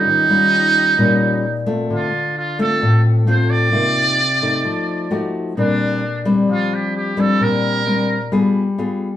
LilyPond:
<<
  \new Staff \with { instrumentName = "Muted trumpet" } { \time 4/4 \key bes \major \tempo 4 = 131 ees'2.~ ees'8 r8 | f'4 f'8 a'4 r8 c''8 d''8~ | d''2.~ d''8 r8 | d'4. r8 f'8 g'8 g'8 a'8 |
bes'2 r2 | }
  \new Staff \with { instrumentName = "Nylon-string guitar" } { \time 4/4 \key bes \major << { <g des' f'>8 <g des' f'>4. <g des' f'>4 r8 <a c' f'>8~ | <a c' f'>8 r4 <a c' f'>4. <a c' f'>4 | <bes ees' f'>4 r8 <a ees'>4. <a ees' ges'>4 | <g c' d'>4 r8 <g c' d'>2 <g c' d'>8~ |
<g c' d'>4 <g c' d'>8 r8 <b f' aes'>8 r8 <b f' aes'>8 r8 | } \\ { ees2 bes,2 | d2 a,2 | c2 f2 | bes,2 f2 |
bes,2 g2 | } >> }
>>